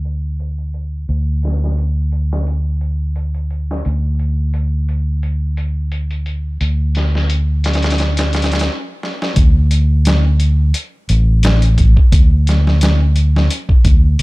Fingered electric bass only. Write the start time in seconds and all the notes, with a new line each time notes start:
Already playing: D2
1.09 D2
3.86 D2
6.61 D2
9.37 D2
11.10 A1
12.12 D2
13.85 D2